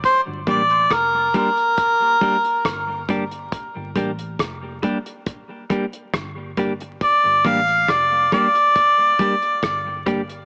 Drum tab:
HH |x-xxx-xxx-xxx-xx|x-xxx-xxx-xxx-xx|x-xxx-xxx-xxx-xx|
SD |----r-------r---|----r-------r---|----r-r-----r---|
BD |o-o-o-o-o-o-o-o-|o-o-o-o-o-o-o-o-|o-o-o-o-o-o-o-o-|